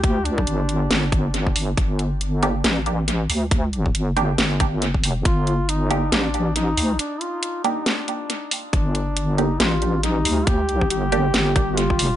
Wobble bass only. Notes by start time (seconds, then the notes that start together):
Already playing: D2
0.27 C#2
0.47 G1
0.91 G1
1.56 G1
1.77 G1
2.64 A1
3.30 D2
3.95 G1
4.38 G1
5.04 F1
5.25 G1
6.12 A1
6.77 D2
8.73 G1
9.60 A1
10.25 D2
10.90 G1
11.34 G1
11.99 F1